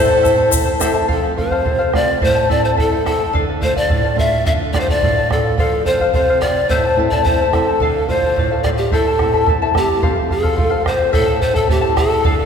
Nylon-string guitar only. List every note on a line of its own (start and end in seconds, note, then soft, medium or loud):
0.00 0.51 A2 medium
0.00 0.12 A3 soft
0.00 0.13 C4 soft
0.00 0.13 E4 medium
0.24 0.69 A3 soft
0.24 0.69 C4 soft
0.24 0.69 E4 soft
0.52 1.07 E2 medium
0.80 1.03 A3 soft
0.80 1.03 C4 soft
0.80 1.03 E4 medium
1.09 1.63 F2 medium
1.37 1.82 A3 soft
1.37 1.82 C4 soft
1.37 1.82 F4 soft
1.65 2.20 C3 medium
1.93 2.16 A3 soft
1.93 2.16 C4 soft
1.93 2.16 F4 soft
2.22 2.76 A2 medium
2.49 2.94 A3 soft
2.49 2.94 C4 soft
2.49 2.94 E4 soft
2.78 3.32 E2 medium
3.05 3.28 A3 soft
3.05 3.28 C4 soft
3.05 3.28 E4 medium
3.33 3.88 D3 medium
3.61 4.06 A3 soft
3.61 4.06 D4 soft
3.61 4.06 F4 medium
3.89 4.43 A2 medium
4.16 4.61 A3 soft
4.16 4.61 D4 soft
4.16 4.62 F4 soft
4.45 5.00 D3 medium
4.73 5.18 A3 soft
4.73 5.18 D4 soft
4.73 5.18 F4 soft
5.01 5.55 A2 medium
5.29 5.52 A3 soft
5.29 5.52 D4 soft
5.29 5.52 F4 soft
5.58 6.12 F3 medium
5.85 6.30 C4 soft
5.85 6.30 F4 soft
5.85 6.30 A4 soft
6.14 6.68 C3 medium
6.41 6.63 C4 soft
6.41 6.63 F4 soft
6.41 6.64 A4 soft
6.69 7.23 A2 medium
6.96 7.41 A3 soft
6.96 7.41 C4 soft
6.96 7.42 E4 soft
7.25 7.79 E2 medium
7.52 7.75 A3 soft
7.52 7.75 C4 soft
7.52 7.75 E4 medium
7.80 8.34 D3 medium
8.08 8.53 A3 soft
8.08 8.53 D4 soft
8.08 8.53 F4 medium
8.36 8.90 A2 medium
8.64 8.86 A3 soft
8.64 8.86 D4 soft
8.64 8.86 F4 soft
8.92 9.46 A2 medium
9.19 9.63 A3 soft
9.19 9.64 C4 soft
9.19 9.64 E4 medium
9.46 10.01 E2 medium
9.73 9.96 A3 soft
9.73 9.97 C4 soft
9.73 9.97 E4 soft
10.02 11.10 F2 medium
10.57 11.11 A3 soft
10.57 11.11 C4 soft
10.57 11.12 F4 medium
11.13 12.21 A2 medium
11.68 12.22 A3 soft
11.68 12.22 C4 soft
11.68 12.23 E4 soft
12.24 12.46 D3 medium